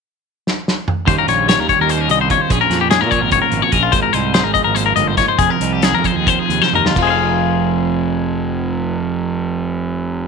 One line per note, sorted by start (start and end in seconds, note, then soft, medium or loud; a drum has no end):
0.47 snare medium
0.68 snare medium
0.88 mid tom medium
1.07 1.16 D#2 medium
1.07 2.07 D#3 medium
1.07 1.66 G3 medium
1.07 1.87 C#4 soft
1.07 1.27 F4 medium
1.07 1.47 G4 medium
1.07 1.17 C5 medium
1.07 kick loud
1.07 closed hi-hat medium
1.18 1.28 A#4 medium
1.27 1.55 A#1 medium
1.27 2.29 F4 medium
1.27 1.48 C#5 medium
1.27 closed hi-hat medium
1.48 2.50 G4 medium
1.48 1.60 C#5 medium
1.48 snare loud
1.48 closed hi-hat medium
1.59 1.68 D#2 medium
1.59 1.69 A#4 medium
1.67 2.47 G3 medium
1.67 1.79 C#5 medium
1.67 kick medium
1.67 closed hi-hat soft
1.80 2.06 D#2 medium
1.80 1.90 A#4 medium
1.87 1.98 A#3 soft
1.87 2.01 C5 medium
1.87 closed hi-hat medium
1.98 2.49 C#4 soft
1.98 2.10 A#4 medium
2.08 2.28 C2 medium
2.08 2.47 D#3 medium
2.08 2.20 D#5 medium
2.08 closed hi-hat medium
2.21 2.30 C5 medium
2.29 2.51 F4 medium
2.29 2.41 C#5 medium
2.29 kick medium
2.29 closed hi-hat medium
2.41 2.52 C5 medium
2.49 2.59 A#1 medium
2.49 3.90 A#2 medium
2.49 3.09 F3 medium
2.49 3.30 C#4 medium
2.49 2.69 G#4 medium
2.49 2.61 G#4 medium
2.49 2.89 C#5 medium
2.49 kick medium
2.49 closed hi-hat medium
2.61 2.81 A#4 medium
2.70 3.02 F2 medium
2.70 3.72 G#4 medium
2.70 snare soft
2.70 closed hi-hat medium
2.81 2.90 G4 medium
2.90 3.01 G#4 medium
2.90 3.90 C#5 medium
2.90 snare loud
2.90 closed hi-hat medium
3.00 3.19 A#2 medium
3.00 3.11 A#4 medium
3.10 3.50 F3 medium
3.10 3.22 C#5 medium
3.10 kick medium
3.10 closed hi-hat soft
3.21 3.39 G#1 medium
3.21 3.32 A#4 medium
3.31 3.90 C#4 soft
3.31 3.41 C#5 medium
3.31 kick medium
3.31 closed hi-hat medium
3.42 3.62 A#4 medium
3.50 3.61 G#1 medium
3.50 4.17 F3 medium
3.50 closed hi-hat soft
3.62 3.72 C#5 medium
3.72 3.91 A#1 medium
3.72 4.14 G#4 medium
3.72 3.82 A#4 medium
3.72 kick medium
3.72 closed hi-hat medium
3.83 3.93 F4 medium
3.92 4.02 G#1 medium
3.92 4.95 G#2 medium
3.92 4.02 C5 medium
3.92 kick loud
3.92 closed hi-hat medium
4.03 4.13 A#4 medium
4.13 4.40 C2 medium
4.13 5.18 D#4 medium
4.13 4.33 C5 medium
4.13 closed hi-hat medium
4.34 5.83 G#4 medium
4.34 4.44 C5 medium
4.34 snare loud
4.34 closed hi-hat medium
4.44 4.53 G#1 medium
4.44 4.53 A#4 medium
4.54 6.04 F3 medium
4.54 4.64 D#5 medium
4.54 kick medium
4.54 closed hi-hat soft
4.64 4.93 G#1 medium
4.64 4.75 A#4 medium
4.75 5.38 A#3 medium
4.75 4.85 C5 medium
4.75 closed hi-hat medium
4.86 4.95 A#4 medium
4.96 5.15 G1 medium
4.96 5.36 G#2 medium
4.96 5.07 D#5 medium
4.96 closed hi-hat medium
5.07 5.17 C5 medium
5.17 5.44 D#4 soft
5.17 5.28 C#5 medium
5.17 kick medium
5.17 snare soft
5.17 closed hi-hat medium
5.28 5.39 C5 medium
5.38 5.48 F1 medium
5.38 6.95 F2 medium
5.38 5.50 G#4 medium
5.38 kick loud
5.38 closed hi-hat medium
5.50 5.73 A#4 medium
5.60 5.94 C2 medium
5.60 6.73 D#4 medium
5.60 closed hi-hat medium
5.73 5.83 G4 medium
5.82 5.93 G#4 medium
5.82 6.94 G#4 medium
5.82 snare loud
5.82 closed hi-hat medium
5.92 6.12 F2 medium
5.92 6.05 A#4 medium
6.04 6.97 F3 soft
6.04 6.16 C5 medium
6.04 kick medium
6.04 closed hi-hat medium
6.15 6.35 D#2 medium
6.15 6.28 G#4 medium
6.27 6.94 C4 medium
6.27 6.39 C5 medium
6.27 kick medium
6.27 closed hi-hat medium
6.39 6.62 G#4 medium
6.48 6.59 D#2 medium
6.48 6.96 C3 soft
6.48 closed hi-hat medium
6.62 6.73 C5 medium
6.62 snare soft
6.72 6.93 D#2 medium
6.72 6.94 D#4 soft
6.72 6.86 A#4 medium
6.72 mid tom medium
6.86 6.97 F4 medium
6.86 snare medium
6.96 10.28 F1 medium
6.96 10.28 F2 medium
6.96 10.28 F3 medium
6.96 10.28 F4 medium
6.96 kick medium
6.96 crash medium
7.00 10.28 C4 medium
7.00 10.28 D#4 medium
7.00 10.28 G#4 medium
7.05 10.28 G#4 soft
7.05 7.10 C5 soft
7.10 10.28 F5 soft